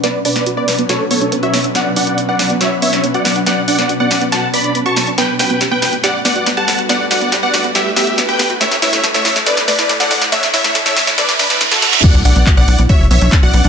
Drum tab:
CC |----------------|----------------|----------------|----------------|
HH |x-oxx-oxx-oxxxox|x-oxx-oxx-oxxxox|x-oxx-oxx-oxxxox|x-oxx-oxx-oxxxox|
CP |----------------|----------------|----------------|----------------|
SD |o--o--o-o-----o-|o-----o-o--o--o-|o--o--o-o-----o-|o-o-o-o-o-o-o-o-|
BD |----------------|----------------|----------------|----------------|

CC |----------------|----------------|----------------|x---------------|
HH |x-oxx-oxx-oxxxox|x-oxx-oxx-oxxxox|xxoxxxoxx-oxxxox|x-oxx-oxx-oxx-ox|
CP |----------------|----------------|----------------|----x-------x---|
SD |o-o-o-o-o-o-o-o-|oooooooooooooooo|oooooooooooooooo|----------------|
BD |----------------|----------------|----------------|o---o---o---o---|